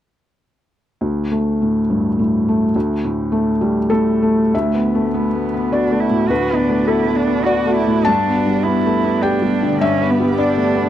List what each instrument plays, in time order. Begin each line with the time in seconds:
1.01 felt piano D2
1.31 felt piano A3
1.62 felt piano A2
1.90 felt piano G2
2.19 felt piano A2
2.48 felt piano A3
2.76 felt piano D2
3.04 felt piano A2
3.32 felt piano A3
3.61 felt piano G3
3.90 felt piano A2 A4
4.22 felt piano A3
4.53 felt piano D2 E5, cello A3, ambient pad B3 F#4 D5
4.74 felt piano B3
4.95 felt piano A3
5.14 cello B3, felt piano B3
5.35 felt piano A3
5.54 felt piano B3
5.72 cello D4, felt piano F#4 D5
5.91 felt piano A3
6.00 cello E4
6.10 felt piano A2
6.28 felt piano D2 B4, cello F#4
6.50 felt piano B3
6.57 cello D4
6.69 felt piano A3
6.87 felt piano B3 A4, cello E4
7.07 felt piano A3
7.16 cello D4
7.27 felt piano B3
7.45 cello F#4, felt piano F#4 D5
7.66 felt piano A3
7.76 cello E4
7.87 felt piano A2
8.05 felt piano G2 A5, ambient pad B3 G4 D5, cello D4
8.28 felt piano B3
8.47 felt piano G3
8.63 felt piano B3, cello E4
8.86 felt piano A3
9.04 felt piano B3
9.22 cello D4, felt piano G4 G5
9.42 felt piano G3
9.63 felt piano D3
9.81 felt piano G2 E5, cello C#4
10.01 felt piano B3
10.11 cello B3
10.20 felt piano G3
10.38 felt piano B3 D5, cello D4
10.57 felt piano A3
10.75 felt piano B3